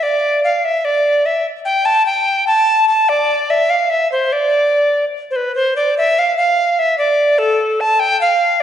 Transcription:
0, 0, Header, 1, 2, 480
1, 0, Start_track
1, 0, Tempo, 408719
1, 746, Time_signature, 6, 3, 24, 8
1, 10134, End_track
2, 0, Start_track
2, 0, Title_t, "Recorder"
2, 0, Program_c, 0, 74
2, 34, Note_on_c, 0, 74, 86
2, 507, Note_off_c, 0, 74, 0
2, 514, Note_on_c, 0, 77, 77
2, 760, Note_on_c, 0, 76, 91
2, 777, Note_off_c, 0, 77, 0
2, 996, Note_on_c, 0, 74, 84
2, 1013, Note_off_c, 0, 76, 0
2, 1477, Note_on_c, 0, 76, 73
2, 1494, Note_off_c, 0, 74, 0
2, 1715, Note_off_c, 0, 76, 0
2, 1941, Note_on_c, 0, 79, 89
2, 2177, Note_on_c, 0, 81, 106
2, 2194, Note_off_c, 0, 79, 0
2, 2410, Note_off_c, 0, 81, 0
2, 2417, Note_on_c, 0, 79, 101
2, 2874, Note_off_c, 0, 79, 0
2, 2900, Note_on_c, 0, 81, 105
2, 3356, Note_off_c, 0, 81, 0
2, 3381, Note_on_c, 0, 81, 97
2, 3628, Note_on_c, 0, 74, 98
2, 3645, Note_off_c, 0, 81, 0
2, 4113, Note_on_c, 0, 76, 88
2, 4130, Note_off_c, 0, 74, 0
2, 4344, Note_on_c, 0, 77, 90
2, 4361, Note_off_c, 0, 76, 0
2, 4577, Note_on_c, 0, 76, 89
2, 4595, Note_off_c, 0, 77, 0
2, 4829, Note_off_c, 0, 76, 0
2, 4838, Note_on_c, 0, 72, 72
2, 5079, Note_on_c, 0, 74, 86
2, 5096, Note_off_c, 0, 72, 0
2, 5930, Note_off_c, 0, 74, 0
2, 6233, Note_on_c, 0, 72, 61
2, 6294, Note_on_c, 0, 71, 69
2, 6312, Note_off_c, 0, 72, 0
2, 6515, Note_off_c, 0, 71, 0
2, 6522, Note_on_c, 0, 72, 94
2, 6743, Note_off_c, 0, 72, 0
2, 6767, Note_on_c, 0, 74, 86
2, 6986, Note_off_c, 0, 74, 0
2, 7021, Note_on_c, 0, 76, 105
2, 7268, Note_on_c, 0, 77, 100
2, 7286, Note_off_c, 0, 76, 0
2, 7477, Note_off_c, 0, 77, 0
2, 7484, Note_on_c, 0, 77, 107
2, 7974, Note_on_c, 0, 76, 113
2, 7991, Note_off_c, 0, 77, 0
2, 8192, Note_off_c, 0, 76, 0
2, 8199, Note_on_c, 0, 74, 100
2, 8673, Note_on_c, 0, 69, 105
2, 8690, Note_off_c, 0, 74, 0
2, 9166, Note_on_c, 0, 81, 109
2, 9183, Note_off_c, 0, 69, 0
2, 9391, Note_on_c, 0, 79, 123
2, 9408, Note_off_c, 0, 81, 0
2, 9625, Note_off_c, 0, 79, 0
2, 9644, Note_on_c, 0, 77, 110
2, 10121, Note_off_c, 0, 77, 0
2, 10134, End_track
0, 0, End_of_file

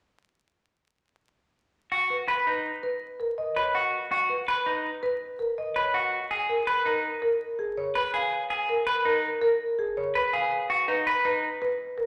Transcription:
0, 0, Header, 1, 3, 480
1, 0, Start_track
1, 0, Tempo, 365854
1, 2276, Time_signature, 6, 2, 24, 8
1, 15824, End_track
2, 0, Start_track
2, 0, Title_t, "Marimba"
2, 0, Program_c, 0, 12
2, 2758, Note_on_c, 0, 71, 47
2, 3069, Note_off_c, 0, 71, 0
2, 3238, Note_on_c, 0, 71, 50
2, 3549, Note_off_c, 0, 71, 0
2, 3716, Note_on_c, 0, 71, 55
2, 4028, Note_off_c, 0, 71, 0
2, 4195, Note_on_c, 0, 70, 46
2, 4435, Note_on_c, 0, 75, 60
2, 4507, Note_off_c, 0, 70, 0
2, 4675, Note_on_c, 0, 73, 47
2, 4747, Note_off_c, 0, 75, 0
2, 4917, Note_on_c, 0, 78, 47
2, 4987, Note_off_c, 0, 73, 0
2, 5228, Note_off_c, 0, 78, 0
2, 5634, Note_on_c, 0, 71, 48
2, 5947, Note_off_c, 0, 71, 0
2, 6119, Note_on_c, 0, 71, 50
2, 6429, Note_off_c, 0, 71, 0
2, 6596, Note_on_c, 0, 71, 61
2, 6908, Note_off_c, 0, 71, 0
2, 7075, Note_on_c, 0, 70, 49
2, 7323, Note_on_c, 0, 75, 59
2, 7388, Note_off_c, 0, 70, 0
2, 7562, Note_on_c, 0, 73, 46
2, 7630, Note_off_c, 0, 75, 0
2, 7804, Note_on_c, 0, 78, 52
2, 7870, Note_off_c, 0, 73, 0
2, 8111, Note_off_c, 0, 78, 0
2, 8518, Note_on_c, 0, 70, 55
2, 8829, Note_off_c, 0, 70, 0
2, 8998, Note_on_c, 0, 70, 55
2, 9309, Note_off_c, 0, 70, 0
2, 9473, Note_on_c, 0, 70, 64
2, 9787, Note_off_c, 0, 70, 0
2, 9956, Note_on_c, 0, 68, 49
2, 10200, Note_on_c, 0, 73, 68
2, 10268, Note_off_c, 0, 68, 0
2, 10447, Note_on_c, 0, 71, 51
2, 10509, Note_off_c, 0, 73, 0
2, 10687, Note_on_c, 0, 77, 51
2, 10752, Note_off_c, 0, 71, 0
2, 10992, Note_off_c, 0, 77, 0
2, 11403, Note_on_c, 0, 70, 57
2, 11710, Note_off_c, 0, 70, 0
2, 11881, Note_on_c, 0, 70, 58
2, 12190, Note_off_c, 0, 70, 0
2, 12352, Note_on_c, 0, 70, 75
2, 12667, Note_off_c, 0, 70, 0
2, 12839, Note_on_c, 0, 68, 54
2, 13082, Note_on_c, 0, 73, 71
2, 13149, Note_off_c, 0, 68, 0
2, 13320, Note_on_c, 0, 71, 59
2, 13390, Note_off_c, 0, 73, 0
2, 13558, Note_on_c, 0, 77, 57
2, 13629, Note_off_c, 0, 71, 0
2, 13868, Note_off_c, 0, 77, 0
2, 14276, Note_on_c, 0, 71, 59
2, 14588, Note_off_c, 0, 71, 0
2, 14762, Note_on_c, 0, 71, 62
2, 15070, Note_off_c, 0, 71, 0
2, 15241, Note_on_c, 0, 71, 67
2, 15550, Note_off_c, 0, 71, 0
2, 15713, Note_on_c, 0, 70, 57
2, 15824, Note_off_c, 0, 70, 0
2, 15824, End_track
3, 0, Start_track
3, 0, Title_t, "Clean electric guitar"
3, 0, Program_c, 1, 27
3, 2516, Note_on_c, 1, 66, 45
3, 2828, Note_off_c, 1, 66, 0
3, 2994, Note_on_c, 1, 71, 57
3, 3241, Note_on_c, 1, 63, 44
3, 3307, Note_off_c, 1, 71, 0
3, 3549, Note_off_c, 1, 63, 0
3, 4678, Note_on_c, 1, 71, 50
3, 4917, Note_on_c, 1, 66, 51
3, 4988, Note_off_c, 1, 71, 0
3, 5228, Note_off_c, 1, 66, 0
3, 5397, Note_on_c, 1, 66, 51
3, 5708, Note_off_c, 1, 66, 0
3, 5879, Note_on_c, 1, 71, 64
3, 6116, Note_on_c, 1, 63, 49
3, 6189, Note_off_c, 1, 71, 0
3, 6428, Note_off_c, 1, 63, 0
3, 7557, Note_on_c, 1, 71, 55
3, 7794, Note_on_c, 1, 66, 54
3, 7868, Note_off_c, 1, 71, 0
3, 8107, Note_off_c, 1, 66, 0
3, 8275, Note_on_c, 1, 68, 46
3, 8588, Note_off_c, 1, 68, 0
3, 8752, Note_on_c, 1, 71, 67
3, 8993, Note_on_c, 1, 63, 55
3, 9067, Note_off_c, 1, 71, 0
3, 9307, Note_off_c, 1, 63, 0
3, 10434, Note_on_c, 1, 71, 58
3, 10670, Note_off_c, 1, 71, 0
3, 10675, Note_on_c, 1, 68, 62
3, 10987, Note_off_c, 1, 68, 0
3, 11155, Note_on_c, 1, 68, 48
3, 11468, Note_off_c, 1, 68, 0
3, 11633, Note_on_c, 1, 71, 65
3, 11876, Note_on_c, 1, 63, 54
3, 11947, Note_off_c, 1, 71, 0
3, 12188, Note_off_c, 1, 63, 0
3, 13321, Note_on_c, 1, 71, 57
3, 13553, Note_off_c, 1, 71, 0
3, 13558, Note_on_c, 1, 68, 63
3, 13869, Note_off_c, 1, 68, 0
3, 14037, Note_on_c, 1, 66, 56
3, 14273, Note_off_c, 1, 66, 0
3, 14279, Note_on_c, 1, 63, 53
3, 14523, Note_on_c, 1, 71, 74
3, 14589, Note_off_c, 1, 63, 0
3, 14759, Note_on_c, 1, 63, 52
3, 14830, Note_off_c, 1, 71, 0
3, 15069, Note_off_c, 1, 63, 0
3, 15824, End_track
0, 0, End_of_file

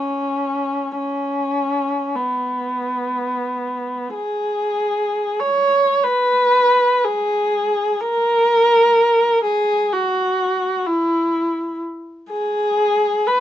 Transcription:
0, 0, Header, 1, 2, 480
1, 0, Start_track
1, 0, Tempo, 500000
1, 12865, End_track
2, 0, Start_track
2, 0, Title_t, "Viola"
2, 0, Program_c, 0, 41
2, 0, Note_on_c, 0, 61, 54
2, 919, Note_off_c, 0, 61, 0
2, 930, Note_on_c, 0, 61, 54
2, 2046, Note_off_c, 0, 61, 0
2, 2073, Note_on_c, 0, 59, 42
2, 3972, Note_on_c, 0, 68, 51
2, 3982, Note_off_c, 0, 59, 0
2, 5150, Note_off_c, 0, 68, 0
2, 5180, Note_on_c, 0, 73, 60
2, 5794, Note_on_c, 0, 71, 64
2, 5801, Note_off_c, 0, 73, 0
2, 6765, Note_on_c, 0, 68, 64
2, 6768, Note_off_c, 0, 71, 0
2, 7686, Note_on_c, 0, 70, 78
2, 7692, Note_off_c, 0, 68, 0
2, 9062, Note_on_c, 0, 68, 69
2, 9067, Note_off_c, 0, 70, 0
2, 9515, Note_off_c, 0, 68, 0
2, 9529, Note_on_c, 0, 66, 63
2, 10428, Note_on_c, 0, 64, 58
2, 10435, Note_off_c, 0, 66, 0
2, 11336, Note_off_c, 0, 64, 0
2, 11806, Note_on_c, 0, 68, 74
2, 12704, Note_off_c, 0, 68, 0
2, 12737, Note_on_c, 0, 71, 68
2, 12865, Note_off_c, 0, 71, 0
2, 12865, End_track
0, 0, End_of_file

